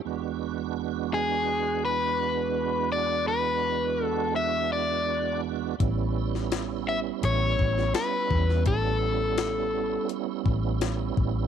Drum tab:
HH |----------------|----------------|x---x---x---x---|x---x---x---x---|
SD |----------------|----------------|---oo------oo--o|----o-------o---|
BD |----------------|----------------|o---------o---o-|o---------o---o-|